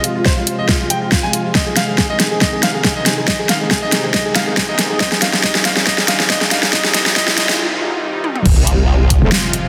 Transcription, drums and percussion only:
0.04 closed hi-hat medium
0.25 kick loud
0.25 snare medium
0.47 closed hi-hat medium
0.69 kick medium
0.69 snare medium
0.90 closed hi-hat medium
1.12 kick medium
1.12 snare medium
1.33 closed hi-hat medium
1.55 kick loud
1.55 snare medium
1.76 snare medium
1.76 closed hi-hat medium
1.98 kick medium
1.98 snare medium
2.20 snare medium
2.20 closed hi-hat medium
2.41 kick medium
2.41 snare medium
2.63 snare medium
2.63 closed hi-hat medium
2.84 kick loud
2.84 snare medium
3.06 snare medium
3.06 closed hi-hat medium
3.28 kick medium
3.28 snare medium
3.49 snare medium
3.49 closed hi-hat medium
3.71 kick loud
3.71 snare medium
3.92 snare medium
3.92 closed hi-hat medium
4.14 kick medium
4.14 snare medium
4.35 snare medium
4.35 closed hi-hat medium
4.57 kick medium
4.57 snare medium
4.79 snare medium
4.79 closed hi-hat medium
5.00 kick loud
5.00 snare medium
5.12 snare medium
5.22 snare medium
5.22 closed hi-hat medium
5.33 snare medium
5.43 kick loud
5.43 snare medium
5.55 snare medium
5.65 snare loud
5.65 closed hi-hat medium
5.76 snare medium
5.87 kick loud
5.87 snare loud
5.98 snare medium
6.08 snare loud
6.08 closed hi-hat medium
6.20 snare medium
6.30 kick loud
6.30 snare loud
6.41 snare medium
6.51 snare loud
6.51 closed hi-hat medium
6.63 snare medium
6.73 kick loud
6.73 snare loud
6.84 snare medium
6.94 snare loud
6.94 closed hi-hat medium
7.06 snare loud
7.16 kick loud
7.16 snare loud
7.28 snare medium
7.38 snare loud
7.38 closed hi-hat medium
7.49 snare loud
8.24 high tom medium
8.36 mid tom medium
8.46 kick loud
8.46 crash loud
8.67 closed hi-hat medium
9.10 kick medium
9.10 closed hi-hat medium
9.32 snare loud
9.53 closed hi-hat medium

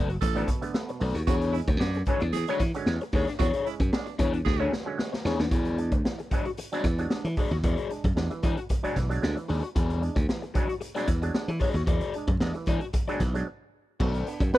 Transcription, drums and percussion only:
0.09 closed hi-hat soft
0.21 kick loud
0.21 closed hi-hat loud
0.36 closed hi-hat medium
0.48 kick medium
0.48 closed hi-hat medium
0.62 closed hi-hat medium
0.74 snare loud
0.89 closed hi-hat soft
1.00 open hi-hat medium
1.15 closed hi-hat soft
1.27 kick loud
1.27 closed hi-hat medium
1.41 closed hi-hat medium
1.54 closed hi-hat medium
1.68 kick loud
1.68 closed hi-hat soft
1.81 snare loud
1.94 closed hi-hat medium
2.06 kick medium
2.06 closed hi-hat medium
2.20 closed hi-hat soft
2.33 closed hi-hat medium
2.47 closed hi-hat medium
2.60 kick medium
2.60 snare soft
2.60 closed hi-hat medium
2.74 closed hi-hat medium
2.86 snare medium
3.01 closed hi-hat soft
3.12 kick medium
3.12 open hi-hat medium
3.27 snare soft
3.27 closed hi-hat soft
3.40 kick loud
3.40 closed hi-hat medium
3.53 closed hi-hat medium
3.66 closed hi-hat medium
3.80 kick medium
3.80 closed hi-hat soft
3.93 snare loud
4.06 closed hi-hat soft
4.19 kick loud
4.19 closed hi-hat medium
4.33 closed hi-hat soft
4.46 kick medium
4.46 snare medium
4.73 snare medium
4.99 snare medium
5.14 snare medium
5.25 snare medium
5.39 snare loud
5.51 kick loud
5.51 closed hi-hat medium
5.65 closed hi-hat medium
5.78 closed hi-hat medium
5.92 kick loud
5.92 closed hi-hat soft
6.05 snare loud
6.19 closed hi-hat soft
6.31 kick medium
6.31 closed hi-hat medium
6.45 closed hi-hat soft
6.57 closed hi-hat medium
6.72 closed hi-hat medium
6.84 kick medium
6.84 snare soft
6.84 closed hi-hat medium
6.98 closed hi-hat medium
7.10 snare loud
7.25 closed hi-hat medium
7.36 kick medium
7.36 open hi-hat medium
7.51 snare soft
7.51 closed hi-hat soft
7.63 kick loud
7.63 closed hi-hat medium
7.77 closed hi-hat soft
7.90 closed hi-hat medium
8.04 kick loud
8.04 closed hi-hat soft
8.17 snare loud
8.31 closed hi-hat soft
8.43 kick loud
8.43 closed hi-hat medium
8.57 closed hi-hat soft
8.69 kick medium
8.69 closed hi-hat medium
8.84 closed hi-hat medium
8.96 kick medium
8.96 snare soft
8.96 closed hi-hat medium
9.11 closed hi-hat medium
9.23 snare loud
9.37 closed hi-hat medium
9.49 open hi-hat medium
9.64 closed hi-hat soft
9.76 kick loud
9.76 closed hi-hat medium
9.90 closed hi-hat medium
10.03 closed hi-hat medium
10.16 kick medium
10.16 closed hi-hat soft
10.29 snare loud
10.43 closed hi-hat soft
10.55 kick loud
10.55 closed hi-hat medium
10.69 closed hi-hat soft
10.81 closed hi-hat medium
10.96 closed hi-hat medium
11.07 kick medium
11.07 snare soft
11.07 closed hi-hat medium
11.22 closed hi-hat medium
11.34 snare loud
11.48 closed hi-hat soft
11.59 kick medium
11.59 open hi-hat medium
11.75 snare soft
11.75 closed hi-hat medium
11.87 kick loud
11.87 closed hi-hat medium
12.01 closed hi-hat medium
12.13 closed hi-hat medium
12.27 kick loud
12.27 closed hi-hat soft
12.40 snare loud
12.54 closed hi-hat soft
12.66 kick medium
12.66 closed hi-hat medium
12.81 closed hi-hat soft
12.93 kick medium
12.93 closed hi-hat medium
13.09 closed hi-hat medium
13.20 kick medium
13.20 snare soft
13.20 closed hi-hat medium
13.35 closed hi-hat medium
14.00 kick loud
14.00 crash medium
14.14 closed hi-hat medium
14.27 closed hi-hat medium
14.40 kick medium
14.40 closed hi-hat soft
14.54 snare loud

